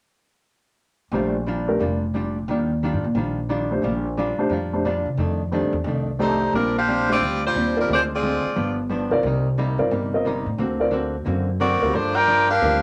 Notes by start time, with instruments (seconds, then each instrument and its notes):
1.12 upright bass A#1, hollow-body jazz guitar A#2 G3 D4 F4, grand piano A3 D4 G4 C5
1.47 hollow-body jazz guitar A#2 G3 D4 F4
1.68 grand piano A3 D4 G4 A#4
1.79 upright bass F1, hollow-body jazz guitar A#2 G3 D4 F4
2.14 hollow-body jazz guitar A#2 G3 D4 F4
2.48 upright bass D#2, hollow-body jazz guitar D#3 G3 D4
2.52 hollow-body jazz guitar F4
2.83 hollow-body jazz guitar D#3 G3 D4 F4
2.93 upright bass G2
3.04 upright bass A#2
3.15 upright bass A#1, hollow-body jazz guitar D#3 G3 D4 F4
3.49 hollow-body jazz guitar D#3 G3 D4 F4
3.71 grand piano A3 D4 G4 C5
3.82 upright bass A#1, hollow-body jazz guitar A#2 G3 D4 F4
4.17 hollow-body jazz guitar A#2 G3 D4 F4
4.38 grand piano A3 D4 G4 C5, muted upright bass stroke
4.49 upright bass F2, hollow-body jazz guitar A#2 G3 D4 F4
4.73 grand piano A3 D4 G4 C5
4.85 hollow-body jazz guitar A#2 G3 D4 F4
5.06 upright bass C3
5.17 upright bass F2, hollow-body jazz guitar F2 D#3 A3 D4
5.52 hollow-body jazz guitar F2 D#3 A3 D4, grand piano A3 D4 G4 C5
5.61 upright bass G2
5.73 upright bass E2
5.84 upright bass C2, hollow-body jazz guitar F2 D#3 A3
5.88 hollow-body jazz guitar D4
6.19 hollow-body jazz guitar F2 D#3 A3 D4, grand piano A3 G4 C5 D5, saxophone section A3 D#4 G4 C5
6.53 upright bass A#1, hollow-body jazz guitar A#2 G3 C4 D4, saxophone section G3 D4 F4 A#4
6.78 saxophone section D4 G4 C5 F5
6.87 hollow-body jazz guitar A#2 G3 C4 D4
7.08 grand piano A3 D4 G4 C5, saxophone section G4
7.13 saxophone section C4 F4 D5
7.20 upright bass D2, hollow-body jazz guitar A#2 G3 C4 D4
7.47 saxophone section G3 D4 F4 C5
7.54 upright bass D#2, hollow-body jazz guitar A#2 G3 C4 D4
7.76 grand piano C4 F4 A#4 D5
7.80 saxophone section G3 D4 F4 A#4
7.88 upright bass D2, hollow-body jazz guitar D3 G#3 C4 F4
7.94 saxophone section G#3 D4 F4 C5
8.16 saxophone section C4 F4 G#4 D5
8.22 hollow-body jazz guitar D3 G#3 C4 F4
8.46 muted upright bass stroke
8.56 upright bass G1, hollow-body jazz guitar G2 F3 B3 D4
8.89 hollow-body jazz guitar G2 F3 B3 D4
9.11 upright bass B1, grand piano C4 F4 A#4 D5
9.23 upright bass C2, hollow-body jazz guitar C3 G3 A#3 D#4
9.58 hollow-body jazz guitar C3 G3 A#3 D#4
9.78 upright bass G2, grand piano C4 F4 A#4 D5
9.91 upright bass G1, hollow-body jazz guitar C3 G3 A#3 D#4
10.13 grand piano C4 F4 A#4 D#5
10.25 hollow-body jazz guitar C3 G3 A#3 D#4
10.46 upright bass A2
10.58 upright bass D2, hollow-body jazz guitar D3 A#3 C4 F#4
10.79 grand piano C4 F4 A#4 D5
10.91 hollow-body jazz guitar D3 A#3 C4 F#4
11.25 upright bass F#2, hollow-body jazz guitar D3 A#3 C4 F#4
11.60 hollow-body jazz guitar D3 A#3 C4 F#4, saxophone section C4 F#4 A#4 D5
11.82 upright bass D2, grand piano G3 C4 F4 A#4
11.93 hollow-body jazz guitar G2 F3 A#3 D4, upright bass G2, saxophone section A3 D4 F4 C5
12.16 saxophone section F4 A#4 D5 G5
12.27 hollow-body jazz guitar G2 F3 A#3 D4
12.50 saxophone section D4 G4 A#4 F5
12.61 upright bass D2, hollow-body jazz guitar G2 F3 A#3, grand piano G3 C4 F4 A#4
12.65 hollow-body jazz guitar D4